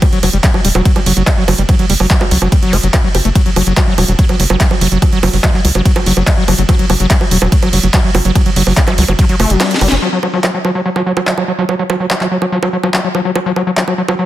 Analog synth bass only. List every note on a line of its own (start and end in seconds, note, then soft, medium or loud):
0.23 0.30 F#1 medium
0.33 0.40 F#1 medium
0.65 0.71 E1 medium
0.75 0.82 E1 medium
1.06 1.13 F#1 loud
1.17 1.24 F#1 medium
1.48 1.55 F#1 loud
1.58 1.65 F#1 medium
1.90 1.96 F#1 medium
2.00 2.07 F#1 medium
2.31 2.38 C#2 loud
2.42 2.49 F#1 medium
2.73 2.80 F#1 loud
2.83 2.90 F#1 medium
3.15 3.21 F#1 medium
3.25 3.32 F#1 medium
3.56 3.63 F#1 medium
3.67 3.74 F#1 medium
3.98 4.05 E1 loud
4.08 4.15 E1 medium
4.40 4.47 F#1 loud
4.50 4.57 F#1 medium
4.81 4.88 F#1 loud
4.92 4.99 F#1 medium
5.23 5.30 F#1 loud
5.33 5.40 F#1 medium
5.65 5.71 C#2 loud
5.75 5.82 F#1 medium
6.06 6.13 F#1 loud
6.17 6.24 F#1 medium
6.48 6.55 F#1 loud
6.58 6.65 F#1 medium
6.90 6.97 F#1 medium
7.00 7.07 F#1 medium
7.31 7.38 E1 loud
7.42 7.49 E1 medium
7.73 7.80 F#1 loud
7.83 7.90 F#1 medium
8.15 8.21 F#1 medium
8.25 8.32 F#1 medium
8.56 8.63 F#1 medium
8.67 8.74 F#1 medium
8.98 9.05 C#2 loud
9.08 9.15 F#1 medium
9.40 9.46 F#1 loud
9.50 9.57 F#1 medium
9.81 9.88 F#1 medium
9.92 9.99 F#1 medium